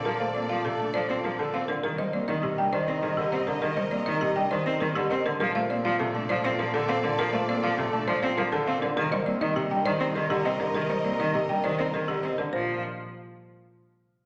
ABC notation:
X:1
M:3/4
L:1/16
Q:1/4=101
K:Bb
V:1 name="Marimba"
B f d f A a d c B A f B | B e d e G g d c B G e B | B e d e G g d c B G e B | B f d f A a d c B A f B |
B f d f A a d c B A f B | B e d e G g d c B G e B | B e d e G g d c B G e B | c2 z8 z2 |]
V:2 name="String section"
[Ad]8- [Ad]3 z | [Be]12- | [Be]8- [Be]3 z | [Ad]12- |
[Ad]8- [Ad]3 z | [Be]12- | [Be]8- [Be]3 z | z12 |]
V:3 name="Grand piano"
B c C F A D c F B A c D | B c C E G D c E B G c D | B c C E G D c E B G c D | B c C F A D c F B A c D |
B c C F A D c F B A c D | B c C E G D c E B G c D | B c C E G D c E B G c D | F2 z8 z2 |]
V:4 name="Cello" clef=bass
F, A, B, F, C, A, F, C F, D, C D, | E, G, B, E, C, G, E, C E, D, C D, | E, G, B, E, C, G, E, C E, D, C D, | F, A, B, F, C, A, F, C F, D, C D, |
F, A, B, F, C, A, F, C F, D, C D, | E, G, B, E, C, G, E, C E, D, C D, | E, G, B, E, C, G, E, C E, D, C D, | F,2 z8 z2 |]
V:5 name="Cello" clef=bass
B,,12 | C,,12- | C,,12 | B,,12- |
B,,12 | C,,12- | C,,12 | B,,2 z8 z2 |]